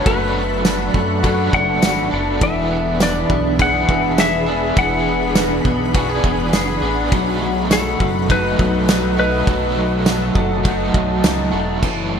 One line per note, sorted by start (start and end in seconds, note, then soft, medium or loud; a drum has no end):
0.00 0.65 D4 medium
0.00 7.08 D4 medium
0.00 1.16 F#4 medium
0.00 1.22 F#4 medium
0.00 2.38 A4 medium
0.00 0.87 B4 medium
0.00 2.37 F#5 medium
0.00 2.37 B5 medium
0.05 0.90 F#1 loud
0.05 1.22 F#3 medium
0.05 0.34 A3 medium
0.05 1.24 B3 medium
0.05 1.25 D4 loud
0.05 0.91 B4 medium
0.05 kick loud
0.05 ride medium
0.10 1.25 A4 loud
0.35 0.93 A3 medium
0.65 2.11 D4 medium
0.65 snare loud
0.65 ride medium
0.65 tambourine medium
0.94 1.50 F#2 medium
0.94 1.52 A3 medium
0.94 kick medium
1.23 2.12 F#3 medium
1.23 2.14 B3 medium
1.23 2.13 D4 medium
1.23 1.81 F#4 medium
1.23 2.67 A4 medium
1.23 2.10 A4 medium
1.23 kick loud
1.23 ride medium
1.53 1.81 F#1 loud
1.53 2.47 A3 medium
1.53 2.67 D5 medium
1.53 2.09 F#5 loud
1.53 kick medium
1.82 2.11 G#1 loud
1.82 2.47 F#4 medium
1.82 snare loud
1.82 ride medium
1.82 tambourine medium
2.11 2.40 F#1 medium
2.11 2.41 B3 soft
2.11 3.00 D4 medium
2.11 2.42 D4 medium
2.11 2.41 A4 medium
2.40 3.26 E1 loud
2.40 3.58 E3 medium
2.40 4.76 E3 medium
2.40 3.60 B3 medium
2.40 7.08 G#4 medium
2.40 4.75 E5 medium
2.40 2.97 E5 medium
2.40 9.44 B5 medium
2.40 kick loud
2.40 ride medium
2.44 3.60 D4 medium
2.44 3.61 G#4 medium
2.71 3.29 B3 medium
3.00 4.47 D4 medium
3.00 3.62 D5 medium
3.00 snare loud
3.00 ride medium
3.00 tambourine medium
3.30 3.86 B1 medium
3.30 3.88 B3 medium
3.30 kick medium
3.59 4.47 E3 medium
3.59 4.50 B3 medium
3.59 4.47 D4 medium
3.59 4.17 G#4 medium
3.59 4.45 G#4 medium
3.59 4.21 F#5 loud
3.59 kick loud
3.59 ride medium
3.89 4.73 E1 loud
3.89 5.06 B3 medium
3.89 5.34 B4 medium
3.89 kick medium
4.18 5.94 G#4 medium
4.18 4.79 E5 medium
4.18 snare loud
4.18 ride medium
4.18 tambourine medium
4.47 4.76 B3 medium
4.47 5.35 D4 medium
4.47 4.77 D4 medium
4.47 4.76 G#4 medium
4.75 5.61 E1 loud
4.75 5.92 E3 medium
4.75 7.12 E3 medium
4.75 5.95 B3 medium
4.75 11.79 F#5 medium
4.75 5.91 F#5 loud
4.75 kick loud
4.75 ride medium
4.79 5.95 D4 medium
4.79 5.96 G#4 medium
5.07 5.65 B3 medium
5.35 6.81 D4 medium
5.35 7.33 B4 medium
5.35 snare loud
5.35 ride medium
5.35 tambourine medium
5.65 6.21 B1 medium
5.65 6.24 B3 medium
5.65 kick medium
5.94 6.82 E3 medium
5.94 6.85 B3 medium
5.94 6.83 D4 medium
5.94 6.09 F#4 medium
5.94 6.81 G#4 medium
5.94 kick loud
5.94 ride medium
6.09 6.52 G#4 medium
6.24 6.52 E1 loud
6.24 7.71 B3 medium
6.24 kick medium
6.53 6.81 F#1 medium
6.53 7.18 G#4 medium
6.53 snare loud
6.53 ride medium
6.53 tambourine medium
6.82 7.10 A1 medium
6.82 7.13 B3 medium
6.82 7.18 D4 medium
6.82 7.13 D4 medium
6.82 7.12 G#4 medium
7.11 7.96 B1 loud
7.11 8.29 B2 loud
7.11 7.41 F#3 medium
7.11 8.28 F#3 medium
7.11 8.30 A3 medium
7.11 11.78 A4 medium
7.11 11.78 D#5 medium
7.11 kick loud
7.11 ride medium
7.15 8.30 D#4 loud
7.15 8.32 F#4 loud
7.41 8.00 F#3 medium
7.71 9.18 A3 medium
7.71 8.31 A4 loud
7.71 snare loud
7.71 ride medium
7.71 tambourine medium
8.00 8.56 F#1 medium
8.00 8.59 F#3 medium
8.00 kick medium
8.29 9.47 F#3 medium
8.29 9.20 A3 medium
8.29 8.88 D#4 medium
8.29 9.18 D#4 medium
8.29 9.17 F#4 medium
8.29 9.18 B4 loud
8.29 kick loud
8.29 ride medium
8.59 9.43 B1 loud
8.59 9.47 F#3 medium
8.59 kick medium
8.88 10.64 D#4 medium
8.88 snare loud
8.88 ride medium
8.88 tambourine medium
9.17 10.06 A3 medium
9.17 9.48 A3 soft
9.17 9.48 D#4 medium
9.17 9.47 F#4 medium
9.17 11.21 B4 loud
9.17 11.16 D#5 medium
9.46 10.32 B1 loud
9.46 10.64 B2 medium
9.46 9.77 F#3 medium
9.46 10.63 F#3 medium
9.46 10.65 A3 medium
9.46 11.80 A5 medium
9.46 kick loud
9.46 ride medium
9.50 10.65 D#4 medium
9.50 10.67 F#4 loud
9.77 10.35 F#3 medium
10.06 11.53 A3 medium
10.06 12.04 F#5 medium
10.06 snare loud
10.06 ride medium
10.06 tambourine medium
10.35 10.91 F#1 loud
10.35 10.94 F#3 medium
10.35 kick medium
10.63 11.82 F#3 medium
10.63 11.55 A3 medium
10.63 11.23 D#4 medium
10.63 11.52 D#4 medium
10.63 11.51 F#4 medium
10.63 kick medium
10.63 ride medium
10.94 11.22 B1 loud
10.94 11.82 F#3 medium
10.94 kick loud
11.24 11.52 C#2 loud
11.24 11.89 D#4 medium
11.24 snare loud
11.24 ride medium
11.24 tambourine medium
11.52 11.81 E1 loud
11.52 12.12 A3 medium
11.52 11.82 A3 medium
11.52 11.83 D#4 medium
11.52 11.82 F#4 medium
11.82 12.20 F#1 medium
11.82 12.20 F#2 medium
11.82 12.20 C#3 medium
11.82 12.20 E3 medium
11.82 12.20 A3 medium
11.82 12.20 C#4 medium
11.82 12.20 F#4 medium
11.82 kick loud
11.82 crash medium
12.12 12.20 A3 medium